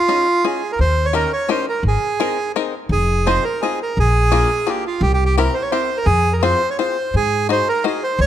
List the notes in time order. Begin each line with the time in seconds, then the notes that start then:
Already playing: F4
0.08 C#4 D#4 F4 G#4
0.44 C#4 D#4 F4 G#4
0.72 A#4
0.79 D#2 C5
1.05 C#5
1.13 C#4 D#4 G4 A#4
1.33 C#5
1.49 C#4 D#4 G4 A#4 C5
1.69 A#4
1.83 G#1
1.88 G#4
2.20 C4 D#4 G#4 A#4
2.56 C4 D#4 G#4 A#4
2.89 F1 G#4
3.26 C4 D#4 F4 G#4 C5
3.44 A#4
3.62 C4 D#4 F4 G#4
3.83 A#4
3.97 A#1 G#4
4.32 A#3 D4 F4 G#4
4.67 A#3 D4 F4 G4 G#4
4.87 F4
5.01 C2 G4
5.14 G4
5.26 G4
5.37 C4 E4 G4 A#4
5.54 C5
5.62 C#5
5.71 C4 E4 G4 A#4 C5
5.97 A#4
6.06 F2 G#4
6.33 A#4
6.43 C4 F4 G#4 C5
6.70 C#5
6.79 C4 F4 G#4 C5
7.14 G#2 G#4
7.49 D#4 F#4 G#4 C5
7.69 A#4
7.84 D#4 F#4 G#4 C5
8.03 C5
8.19 C#2 C#5